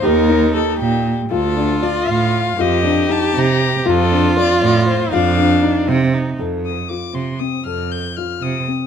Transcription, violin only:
\new Staff \with { instrumentName = "Violin" } { \time 5/8 \key f \mixolydian \tempo 4 = 118 bes'4 a'8 g'8. r16 | a'4 d''8 f''4 | ees''4 a''8 bes''4 | a'4 d''8 d''8 c''8 |
f''4. r4 | r8 ees'''8 d'''8 c'''8 ees'''8 | f'''8 g'''8 f'''8 ees'''8. r16 | }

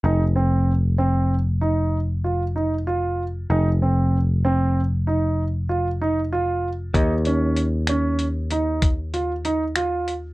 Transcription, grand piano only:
\new Staff \with { instrumentName = "Grand piano" } { \time 11/8 \key des \lydian \tempo 4 = 96 ees'8 c'4 c'4 ees'4 f'8 ees'8 f'4 | ees'8 c'4 c'4 ees'4 f'8 ees'8 f'4 | ees'8 des'4 des'4 ees'4 f'8 ees'8 f'4 | }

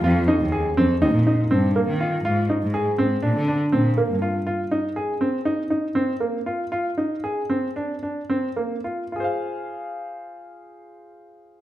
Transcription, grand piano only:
\new Staff \with { instrumentName = "Grand piano" } { \time 9/8 \key f \dorian \tempo 4. = 81 f'8 ees'8 aes'8 c'8 ees'8 ees'8 c'8 bes8 f'8 | f'8 ees'8 aes'8 c'8 d'8 d'8 c'8 bes8 f'8 | f'8 ees'8 aes'8 c'8 ees'8 ees'8 c'8 bes8 f'8 | f'8 ees'8 aes'8 c'8 d'8 d'8 c'8 bes8 f'8 |
<f' aes' c'' f''>1~ <f' aes' c'' f''>8 | }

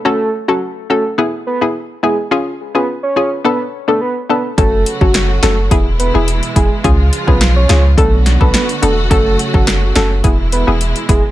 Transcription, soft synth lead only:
\new Staff \with { instrumentName = "Soft synth lead" } { \time 4/4 \key fis \minor \tempo 4 = 106 a'8 r16 fis'16 r8 a'16 r8. b'16 r8. gis'16 r16 | r8. b'16 r16 cis''16 cis''16 r16 b'16 r8 a'16 b'16 r16 b'16 r16 | a'8 r16 fis'16 r8 a'16 r8. b'16 r8. gis'16 r16 | r8. b'16 r16 cis''16 cis''16 r16 a'16 r8 b'16 b'16 r16 a'16 r16 |
a'8 r16 fis'16 r8 a'16 r8. b'16 r8. gis'16 r16 | }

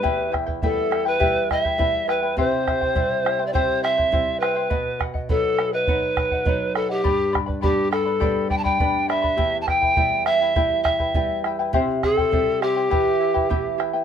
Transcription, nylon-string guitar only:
\new Staff \with { instrumentName = "Nylon-string guitar" } { \time 4/4 \key e \minor \tempo 4 = 102 e,4 <g b e'>4 <g b e'>4 <g b e'>4 | c4 <g c' e'>4 <g c' e'>4 <g c' e'>4 | b,4 <fis b dis'>4 <fis b dis'>4 <fis b dis'>4 | g,4 <g b d'>4 <g b d'>4 <g b d'>4 |
e,4 <g b e'>4 <g b e'>4 <g b e'>4 | c4 <g c' e'>4 e4 <b e' g'>4 | }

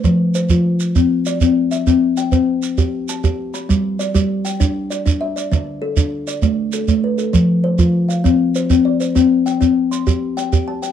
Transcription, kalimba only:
\new Staff \with { instrumentName = "Kalimba" } { \time 12/8 \key g \mixolydian \tempo 4. = 132 << { c''8 r8 c''8 f'4. r4 d''4. e''8~ | e''8 r8 g''8 c''4. r4 a''4. b''8~ | b''8 r8 d''8 g'4 g''4. d''4 e''8 d''8~ | d''8 r8 a'8 d'4 d''4. a'4 b'8 a'8~ |
a'8 r8 c''8 f'4 f''4. c''4 d''8 c''8~ | c''8 r8 g''4. c'''4. g''4 a''8 g''8 | } \\ { f4 r8 f4 r8 c'4 r8 c'4 r8 | c'4 r8 c'4 r8 g'4 r8 g'4 r8 | g4 r8 g4 r8 d'4 r8 d'4 r8 | d4 r8 d4 r8 a4 r8 a4 r8 |
f4 r8 f4 r8 c'4 r8 c'4 r8 | c'4 r8 c'4 r8 g'4 r8 g'4 r8 | } >> }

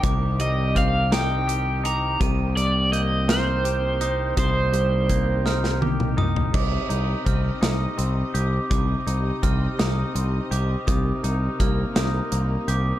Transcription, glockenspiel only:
\new Staff \with { instrumentName = "Glockenspiel" } { \time 6/8 \key c \minor \tempo 4. = 55 d'''4 f'''8 ees'''4 d'''8 | ees''''4 g'''8 f'''4 ees'''8 | ees'''4 g'''8 f'''4 ees'''8 | d'''4 f'''8 ees'''4 d'''8 |
d'''4 f'''8 ees'''4 d'''8 | ees'''4 f'''8 ees'''4 d'''8 | }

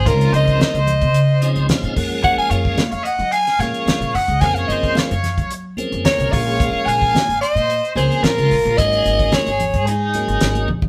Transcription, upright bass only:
\new Staff \with { instrumentName = "Upright bass" } { \clef bass \time 4/4 \key ges \lydian \tempo 4 = 110 des,8 des,8 r16 des,8 des4 des,16 r16 bes,16 ges,8~ | ges,16 r16 ges,8 r16 f,16 r16 ges8 r16 bes,16 r16 ges16 bes,16 ges,16 des,16 | ges,8 ges,8 r16 ges,8 ges4 ges,16 r16 c,16 bes,,8~ | bes,,16 r16 bes,,8 r16 aes,,16 r16 bes,8 r16 des,16 r16 bes,16 des,16 bes,,16 bes,,16 |
aes,,8 aes,,8 r16 aes,,8 aes,4 aes,,16 aes,,8 bes,,8 | }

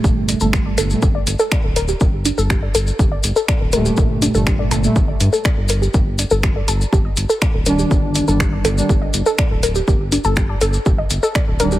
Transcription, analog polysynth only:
\new Staff \with { instrumentName = "Analog polysynth" } { \clef bass \time 4/4 \key g \minor \tempo 4 = 122 <bes, g a>8. <bes, g a>4 <bes, g a>16 r2 | r2. r8 <bes, g a>8~ | <bes, g a>8. <bes, g a>4 <bes, g a>16 r2 | r2. r8 <ees g d'>8~ |
<ees g d'>8. <ees g d'>4 <ees g d'>16 r2 | r2. r8 <ees g d'>8 | }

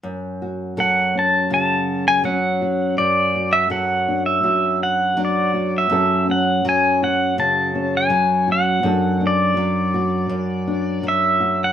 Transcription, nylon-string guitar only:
\new Staff \with { instrumentName = "Nylon-string guitar" } { \time 4/4 \key fis \minor \tempo 4 = 82 << { r8 fis'8 a'8 cis'8 fis'4 cis'8 fis'8 | r8 fis'8 a'8 d'8 fis'4 d'8 fis'8 | <fis cis' fis' a'>8 cis'4 fis'4 cis'4 fis'8 | <fis d' fis' a'>8 d'4 fis'4 d'4 fis'8 | } \\ { fis,4 fis4 cis4 fis4 | fis,4 fis4 fis,4 fis4 | fis,4 fis4 cis4 fis4 | fis,4 fis4 fis,4 fis4 | } >> }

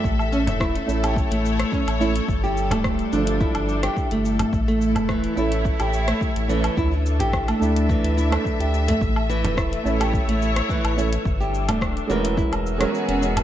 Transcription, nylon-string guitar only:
\new Staff \with { instrumentName = "Nylon-string guitar" } { \time 4/4 \key a \major \tempo 4 = 107 r8 cis'16 r16 e'16 r8 g'8 a8. cis'16 r16 e'16 r16 | r16 g'8 a8. d'16 r16 e'16 r8 g'8 a8. | r16 a8. e8 e'16 r8 g'8 a8. e8 | e'16 r8 g'8 a8. e8 e'16 r8 g'8 a16 |
r8 e8 e'16 r8 g'8 a8. e8 e'16 r16 | r16 g'8 a8. e8 e'16 r8 fis16 r16 cis'16 gis16 r16 | }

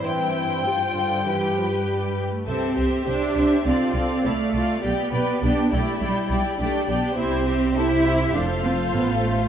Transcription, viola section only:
\new Staff \with { instrumentName = "Viola section" } { \time 4/4 \key c \major \tempo 4 = 102 <e c'>4 c8 d8 e8 f8 g8. a16 | <g' c''>8 <g' c''>8 <g' c''>8 <g' c''>8 <a' d''>8 <a' d''>8 <a' d''>8 <a' d''>8 | <g' d''>8 <g' d''>8 <g' d''>8 <g' d''>8 <g' d''>8 <g' d''>8 <g' d''>8 <g' d''>8 | <g' c''>4 <g' c''>4 <a' c''>2 | }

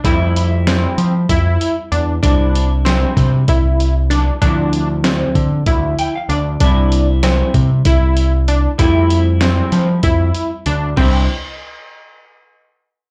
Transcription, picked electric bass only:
\new Staff \with { instrumentName = "Picked electric bass" } { \clef bass \time 7/8 \key c \major \tempo 4 = 96 f,4. f8 f,8 r8 e,8 | c,4. c8 c,4. | d,4. d8 d,8 r8 d,8 | c,4. c8 c,4. |
f,4. f8 f,8 r8 d,8 | c,8 r2. | }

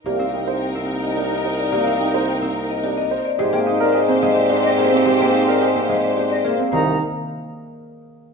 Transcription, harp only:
\new Staff \with { instrumentName = "Harp" } { \time 3/4 \key c \minor \tempo 4 = 108 << { bes16 c'4 c'4.~ c'16 | bes16 c'4 c'4.~ c'16 | aes16 bes4 bes16 aes4 bes8 | aes16 bes4 bes16 aes4 bes8~ |
bes2. | } \\ { r2. | r2. | r2. | r2. |
ees8 r2 r8 | } >> }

